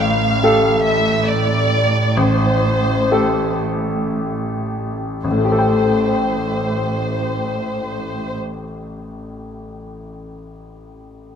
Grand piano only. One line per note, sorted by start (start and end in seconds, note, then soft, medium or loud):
0.00 0.40 A1 soft
0.43 2.13 A3 soft
0.43 2.13 G4 soft
0.43 2.13 A4 soft
2.17 3.09 A1 soft
3.11 5.20 A3 soft
3.11 5.20 G4 soft
3.11 5.21 A4 soft
5.24 8.34 A1 soft
5.31 8.41 A2 soft
5.38 8.48 A3 soft
5.45 8.55 G4 soft
5.52 8.62 A4 soft
5.59 8.69 G5 soft